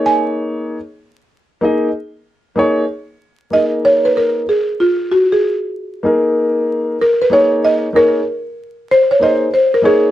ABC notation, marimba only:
X:1
M:4/4
L:1/16
Q:"Swing 16ths" 1/4=95
K:D#m
V:1 name="Marimba"
g12 z4 | z6 d2 c B A2 G2 E2 | F G4 z6 z A B c2 | d2 A6 ^B c d2 B A G2 |]